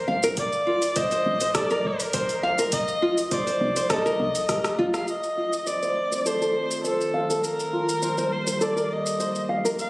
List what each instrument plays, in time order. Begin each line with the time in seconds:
0.08 fm bass A#1, nylon-string guitar F5
0.23 nylon-string guitar A#4, shaker
0.37 kamancheh D5, kick, open hi-hat, shaker
0.52 shaker
0.67 nylon-string guitar F4, udu
0.82 open hi-hat, shaker
0.96 nylon-string guitar C5, kamancheh D#5, kick, open hi-hat, shaker
1.11 nylon-string guitar C5, open hi-hat, shaker
1.26 fm bass A#1
1.40 nylon-string guitar C5, open hi-hat, shaker
1.55 nylon-string guitar A4, kamancheh D5, kick, cross-stick, open hi-hat, shaker
1.70 nylon-string guitar A#4, shaker
1.85 fm bass F1, kamancheh A#4
2.00 open hi-hat, shaker
2.13 nylon-string guitar C5, kick, open hi-hat, shaker
2.29 open hi-hat, shaker
2.42 fm bass C2, nylon-string guitar F5, udu
2.58 nylon-string guitar A#4, shaker
2.72 kamancheh D#5, kick, open hi-hat, shaker
2.88 shaker
3.02 nylon-string guitar F4, udu
3.18 open hi-hat, shaker
3.31 nylon-string guitar C5, kamancheh D5, kick, open hi-hat, shaker
3.47 nylon-string guitar C5, open hi-hat, shaker
3.61 fm bass C2
3.76 nylon-string guitar C5, open hi-hat, shaker
3.90 fm bass C2, nylon-string guitar A4, kamancheh D#5, kick, cross-stick, open hi-hat, shaker
4.06 nylon-string guitar A#4, shaker
4.20 fm bass C2, udu
4.35 fm bass G1, open hi-hat, shaker
4.49 nylon-string guitar A#4, kick, cross-stick, open hi-hat, shaker
4.64 cross-stick, open hi-hat, shaker
4.79 fm bass G1, nylon-string guitar F4
4.94 nylon-string guitar F5, cross-stick, shaker
5.07 ambient pad D#3 A3 C4 F4, kamancheh D#5, shaker
5.23 shaker
5.37 nylon-string guitar F4
5.53 shaker
5.67 nylon-string guitar C5, kamancheh D5, shaker
5.83 nylon-string guitar C5, shaker
6.12 nylon-string guitar C5, shaker
6.26 nylon-string guitar A4, kamancheh C5, shaker
6.42 nylon-string guitar A4, shaker
6.71 shaker
6.84 kamancheh A4, nylon-string guitar C5, shaker
7.01 shaker
7.14 nylon-string guitar F5
7.30 nylon-string guitar A4, shaker
7.44 ambient pad G3 A#3 G4, kamancheh A#4, shaker
7.60 shaker
7.73 nylon-string guitar F4
7.89 shaker
8.02 nylon-string guitar C5, shaker
8.18 nylon-string guitar C5, shaker
8.32 kamancheh C5
8.47 nylon-string guitar C5, shaker
8.61 nylon-string guitar A4, kamancheh D5, shaker
8.76 nylon-string guitar A#4, shaker
8.93 kamancheh D#5
9.06 shaker
9.20 nylon-string guitar C5, shaker
9.35 shaker
9.49 nylon-string guitar F5
9.65 nylon-string guitar A#4, shaker
9.79 ambient pad C3 C4 F4, kamancheh F5, shaker